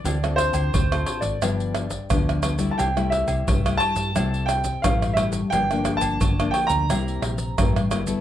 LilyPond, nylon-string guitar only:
\new Staff \with { instrumentName = "Nylon-string guitar" } { \time 4/4 \key c \major \tempo 4 = 88 << { <c' f' a'>16 <c' f' a'>4 <c' f' a'>8. <f b d'>8. r16 <f b d'>8 <f b d'>16 <g a e'>16~ | <g a e'>16 <g a e'>4 <g a e'>8. <g a e'>8. r16 <g a e'>8 <g a e'>16 r16 | <f bes d'>16 <f bes d'>4 <f bes d'>8. <g bes e'>8. r16 <g bes e'>16 r16 <g bes e'>16 <b e' a'>16 | } \\ { d4 a,4 g,4 d4 | c4 g,4 c4 g,4 | g,4 d4 c4 g,4 | } >> }